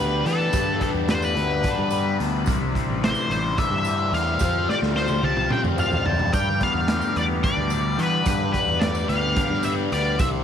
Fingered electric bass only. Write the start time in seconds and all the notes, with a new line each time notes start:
Already playing: D2
0.26 E3
0.53 G2
0.94 E2
1.36 D2
1.78 G2
2.20 D2
2.48 C2
2.89 A1
3.30 A1
3.71 G2
4.12 E2
4.41 F2
4.82 D2
5.23 C2
5.64 F2
6.06 F2
6.33 G2
6.74 E2
7.16 E2
7.57 D2
7.98 E3
8.26 G2
8.67 E2
9.09 D2
9.50 G2
9.92 D2
10.19 C2